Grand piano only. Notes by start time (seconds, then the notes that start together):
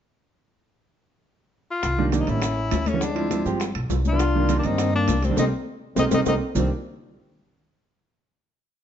1.98 D#3 G3 A#3 D4
2.12 D#3 G3 A#3 D4
2.27 D#3 G3 A#3 D4
2.93 E3 G3 B3 C#4
3.15 F3 G#3 C4 E4
3.30 F3 G#3 C4 E4
3.45 F3 G#3 C4 G4
4.13 F3 G3 B3 D4
4.35 D#3 G3 A#3 D4
4.49 D#3 G3 A#3 D4
4.64 D#3 G3 A#3 D4
5.30 D#3 G3 A#3 D4
5.38 G3 A#3 C4
5.97 G3 A#3 C4
6.11 G3 A#3 C4
6.26 G3 A#3 C4
6.55 D#3 G3 A#3 D4